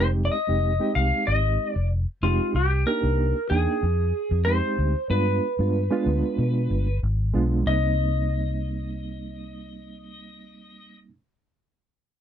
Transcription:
0.00 fingered electric bass F1, reed electric piano G#3 C4 D#4 G4, electric slide guitar C5
0.25 electric slide guitar D5
0.32 electric slide guitar D#5
0.48 fingered electric bass F1, reed electric piano G#3 C4 D#4 G4
0.79 reed electric piano G#3 C4 D#4 G4
0.95 fingered electric bass C2, electric slide guitar F5
1.27 fingered electric bass G#1, electric slide guitar D#5
1.70 electric slide guitar D5
1.76 fingered electric bass F1
2.23 fingered electric bass F1, reed electric piano G#3 C4 D#4 G4, electric slide guitar F4
2.54 fingered electric bass C2, electric slide guitar G4
2.86 reed electric piano A#3 D4 D#4 G4, electric slide guitar A#4
3.03 fingered electric bass C2
3.50 fingered electric bass E2, reed electric piano A#3 D4 D#4 G5, electric slide guitar G#4
3.83 fingered electric bass F2
4.31 fingered electric bass F2
4.45 reed electric piano G#3 C4 D#4 G4, electric slide guitar C5
4.78 fingered electric bass D2
5.10 fingered electric bass G2, reed electric piano G#3 B3 D4 F4, electric slide guitar B4
5.59 fingered electric bass G2, reed electric piano G#3 B3 D4 F4
5.91 reed electric piano G#3 B3 D4 F4
6.06 fingered electric bass D2
6.38 fingered electric bass B2
6.70 fingered electric bass G1
7.03 fingered electric bass G#1
7.34 fingered electric bass B1, reed electric piano G#3 B3 D4 F4
7.62 reed electric piano G3 A#3
7.67 fingered electric bass C2, reed electric piano C4 D#4, electric slide guitar D#5

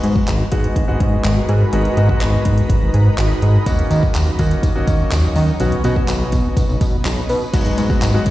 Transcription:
Already playing: grand piano G#3 B3 D#4 F#4, ambient pad G#3 D#4 F#4 A#4 B4
0.04 analog synth bass G#2, closed hi-hat
0.16 kick
0.28 analog synth bass G#1, clap, closed hi-hat
0.52 analog synth bass G#2, grand piano G#3 B3 D#4 F#4, kick, closed hi-hat
0.64 closed hi-hat
0.76 analog synth bass G#1, kick, closed hi-hat
0.88 analog synth bass G#1, grand piano G#3 B3 D#4 F#4
1.00 analog synth bass G#2, kick, closed hi-hat
1.24 analog synth bass G#1, clap, closed hi-hat
1.49 analog synth bass G#2, closed hi-hat
1.73 analog synth bass G#1, grand piano G#3 B3 D#4 F#4, closed hi-hat
1.85 closed hi-hat
1.97 analog synth bass G#2, grand piano G#3 B3 D#4 F#4, closed hi-hat
2.09 grand piano G#3 B3 D#4 F#4, kick
2.21 analog synth bass G#1, clap, closed hi-hat
2.45 analog synth bass G#2, kick, closed hi-hat
2.58 closed hi-hat
2.69 analog synth bass G#1, kick, closed hi-hat
2.82 analog synth bass G#1
2.94 analog synth bass G#2, closed hi-hat
3.18 analog synth bass G#1, clap, closed hi-hat
3.42 analog synth bass G#2, closed hi-hat
3.66 analog synth bass D#2, ambient pad F#3 C#4, grand piano A#3 C#4 D#4 F#4, kick, closed hi-hat, tambourine
3.79 closed hi-hat
3.91 analog synth bass D#3, closed hi-hat, tambourine
4.03 kick
4.15 analog synth bass D#2, clap, closed hi-hat, tambourine
4.39 analog synth bass D#3, grand piano A#3 C#4 D#4 F#4, kick, closed hi-hat, tambourine
4.51 closed hi-hat
4.63 analog synth bass D#2, kick, closed hi-hat, tambourine
4.75 analog synth bass D#2, grand piano A#3 C#4 D#4 F#4
4.87 analog synth bass D#3, kick, closed hi-hat, tambourine
5.12 analog synth bass D#2, clap, closed hi-hat, tambourine
5.36 analog synth bass D#3, open hi-hat, tambourine
5.48 tambourine
5.60 analog synth bass B1, grand piano B3 C#4 D#4 F#4, ambient pad B3, closed hi-hat, tambourine
5.72 closed hi-hat
5.84 analog synth bass B2, grand piano B3 C#4 D#4 F#4, closed hi-hat, tambourine
5.96 grand piano B3 C#4 D#4 F#4, kick
6.08 analog synth bass B1, clap, closed hi-hat, tambourine
6.32 analog synth bass B2, kick, closed hi-hat, tambourine
6.57 analog synth bass B1, kick, closed hi-hat, tambourine
6.69 analog synth bass B1, tambourine
6.81 analog synth bass B2, kick, closed hi-hat, tambourine
7.05 analog synth bass B1, clap, closed hi-hat, tambourine
7.29 analog synth bass B2, open hi-hat, tambourine
7.42 tambourine
7.53 analog synth bass G#1, grand piano F#3 G#3 B3 D#4 F#4, ambient pad G#3 D#4 F#4 A#4 B4, kick, closed hi-hat, crash, tambourine
7.66 closed hi-hat
7.78 analog synth bass G#2, closed hi-hat, tambourine
7.90 grand piano F#3 G#3 B3 D#4 F#4, kick, tambourine
8.02 analog synth bass G#1, clap, closed hi-hat, tambourine
8.14 grand piano F#3 G#3 B3 D#4 F#4
8.26 analog synth bass G#2, kick, closed hi-hat, tambourine

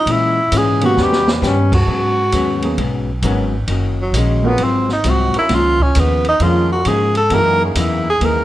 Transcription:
Already playing: tenor saxophone D#4
0.06 upright bass A#2, hollow-body jazz guitar A#2 E3 G#3, ride
0.10 hollow-body jazz guitar C#4, tenor saxophone E4
0.52 upright bass G#2, hollow-body jazz guitar A#2 E3 G#3 C#4, hi-hat pedal, ride
0.58 tenor saxophone G#4
0.81 grand piano D#3 A#3 B3 C#4 G4, ride
0.86 tenor saxophone F#4
0.97 upright bass D#2, hollow-body jazz guitar D#3 B3 C#4 G4, trombone section G3 C#4 D#4 B4, snare
1.03 tenor saxophone G4
1.12 snare
1.28 snare
1.33 tenor saxophone A#3
1.41 upright bass G2, hollow-body jazz guitar D#3 B3 C#4 G4, snare, hi-hat pedal
1.47 tenor saxophone C#4
1.72 tenor saxophone F#4, kick, crash
1.86 hollow-body jazz guitar G#2 F#3 B3 C#4, upright bass G#2
2.32 upright bass D#2, hollow-body jazz guitar G#2 F#3 B3 C#4, hi-hat pedal, ride
2.62 grand piano F#3 A#3 B3 C#4 G#4, ride
2.77 upright bass B1, hollow-body jazz guitar G#2 F#3 B3, ride
2.81 hollow-body jazz guitar C#4
3.22 upright bass G#1, hollow-body jazz guitar G#2 F#3 B3 C#4, trombone section F#3 B3 C#4 A#4, hi-hat pedal, ride
3.68 upright bass F#1, hollow-body jazz guitar D#3 A#3 C#4 F#4, ride
4.01 tenor saxophone F#3
4.12 upright bass A#1, hollow-body jazz guitar D#3, hi-hat pedal, ride
4.16 tenor saxophone G#3, hollow-body jazz guitar A#3 C#4 F#4
4.44 grand piano F3 G#3 A#3 C4 F#4, trombone section F#3 C4 F4 A#4, tenor saxophone B3
4.58 upright bass G#1, hollow-body jazz guitar G#2 F#3 C4, ride
4.62 tenor saxophone C4, hollow-body jazz guitar F4
4.89 tenor saxophone D#4, snare
5.04 upright bass C2, hollow-body jazz guitar G#2 F#3 C4 F4, hi-hat pedal, ride
5.09 tenor saxophone F#4
5.34 trombone section F3 C#4 D#4 A#4, muted upright bass stroke, ride
5.38 tenor saxophone E4
5.49 upright bass C#2, hollow-body jazz guitar C#3 F3 A#3, grand piano D#3 G#3 A#3 C#4 F4, snare, ride
5.53 hollow-body jazz guitar D#4, tenor saxophone F4
5.80 tenor saxophone C#4, kick
5.95 upright bass D#2, hollow-body jazz guitar C#3 F3 A#3 D#4, hi-hat pedal, ride
6.00 tenor saxophone B3
6.24 tenor saxophone D#4, ride
6.40 upright bass F2, hollow-body jazz guitar C#3 F3 A#3 D#4, grand piano D#3 G#3 A#3 C#4 F4, trombone section F3 C#4 D#4 A#4, tenor saxophone F4, ride
6.72 tenor saxophone F#4
6.85 upright bass G#2, hollow-body jazz guitar C#3 F3 A#3 D#4, tenor saxophone G#4, hi-hat pedal, ride
7.15 tenor saxophone A4, ride
7.30 hollow-body jazz guitar F#2 E3 A#3 D#4, upright bass F#2, grand piano E3 G#3 A#3 D#4 F#4, trombone section A#3 D#4 E4 G#4, ride
7.34 tenor saxophone A#4
7.65 tenor saxophone C#4
7.75 upright bass E2, hollow-body jazz guitar F#2 E3 A#3 D#4, hi-hat pedal, ride
7.80 tenor saxophone E4
8.10 tenor saxophone G#4
8.21 upright bass D#2, hollow-body jazz guitar F#2 E3 A#3, grand piano E3 G#3 A#3 D#4 G#4, ride
8.25 hollow-body jazz guitar D#4, tenor saxophone A#4

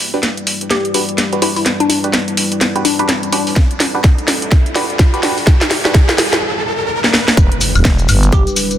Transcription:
Already playing: analog synth pad G3 E4 B4 D5, riser
0.14 synth stab D4 F#4 G4 B4
0.23 snare, closed hi-hat
0.37 closed hi-hat
0.47 open hi-hat
0.61 closed hi-hat
0.71 synth pluck G4, snare, closed hi-hat
0.85 closed hi-hat
0.94 synth stab D4 F#4 G4 B4, open hi-hat
1.09 closed hi-hat
1.18 snare, closed hi-hat
1.33 synth stab D4 F#4 G4 B4, closed hi-hat
1.42 synth stab D4 F#4 G4 B4, synth pluck E4, open hi-hat
1.56 synth pluck E4, open hi-hat
1.66 snare, closed hi-hat
1.80 synth pluck D4, closed hi-hat
1.89 synth pluck D4, open hi-hat
2.04 synth stab D4 F#4 G4 B4, closed hi-hat
2.13 snare, closed hi-hat
2.28 closed hi-hat
2.37 open hi-hat
2.52 closed hi-hat
2.61 snare, closed hi-hat
2.76 synth stab D4 F#4 G4 B4, closed hi-hat
2.85 synth pluck D4, open hi-hat
2.99 synth stab D4 F#4 G4 B4, synth pluck D4, closed hi-hat
3.09 snare, closed hi-hat
3.23 closed hi-hat
3.32 synth pluck D4, synth stab D4 F#4 G4 B4, open hi-hat
3.47 open hi-hat
3.56 analog synth pad A4, kick, snare
3.71 closed hi-hat
3.80 snare, open hi-hat
3.95 synth stab D4 F#4 G4 B4
4.04 kick, snare, closed hi-hat
4.18 closed hi-hat
4.28 snare, open hi-hat
4.42 closed hi-hat
4.52 kick, snare, closed hi-hat
4.66 closed hi-hat
4.75 synth stab D4 F#4 G4 B4, snare, open hi-hat
4.90 closed hi-hat
4.99 kick, snare, closed hi-hat
5.14 synth stab D4 F#4 G4 B4, closed hi-hat
5.23 synth stab D4 F#4 G4 B4, snare, open hi-hat
5.38 open hi-hat
5.47 kick, snare, closed hi-hat
5.61 snare, closed hi-hat
5.71 snare, open hi-hat
5.85 synth stab D4 F#4 G4 B4, snare
5.94 kick, snare, closed hi-hat
6.09 snare, closed hi-hat
6.18 snare, open hi-hat
6.33 snare, closed hi-hat
7.04 snare
7.14 snare
7.28 snare
7.37 fm bass E1, analog synth pad G3 D4 E4 B4, kick, closed hi-hat, impact, maracas
7.52 closed hi-hat
7.61 open hi-hat, maracas
7.75 fm bass E1, high woodblock, maracas
7.84 kick, snare, closed hi-hat, maracas
7.98 closed hi-hat, maracas
8.09 fm bass G1, open hi-hat, high woodblock, maracas
8.23 closed hi-hat, maracas
8.32 synth pluck G4, kick, closed hi-hat, maracas
8.47 closed hi-hat, maracas
8.56 open hi-hat, maracas
8.71 closed hi-hat, maracas

